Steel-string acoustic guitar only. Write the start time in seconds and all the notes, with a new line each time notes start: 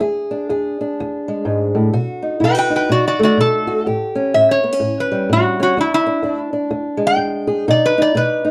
0.00 E2 G#4
0.31 D4
0.49 E2 G#4
0.81 D4
1.00 E2
1.28 G#3
1.45 G#2
1.75 A2
1.93 B2 F#4
2.22 D#4
2.40 B2 E4
2.55 F#4
2.70 D#4
2.89 B2
3.19 A3
3.37 B2
3.67 F#4
3.86 A2 G4
4.15 C#4
4.34 A2
4.64 B3
4.72 C#4
4.80 A2
5.12 G3
5.29 A2
5.60 C#4
5.77 E2 D4
6.06 D4
6.22 E2 D4
6.53 D4
6.71 E2
6.97 G#3
7.16 E2
7.47 G#4
7.68 B2 D#4
7.98 D#4
8.15 B2 D#4
8.45 D#4